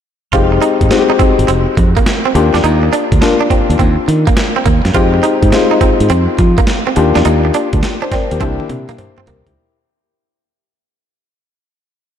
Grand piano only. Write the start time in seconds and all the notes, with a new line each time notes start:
0.33 G#3 C4 D#4 G4
0.90 G#3 C4 D#4 F#4
0.98 G4
2.34 A#3 D4 F4 G4
3.21 A#3 D4 F4 A#4
4.94 G#3 C4 D#4 G4
5.52 G#3 C4 D#4 F4
6.96 A#3 D4 F4 G4
8.02 C5
8.12 A#4 D5
8.31 G4 A#4
8.40 A#3 D4 E4 G4
8.98 C5
9.28 G4 A#4
9.46 E4 G4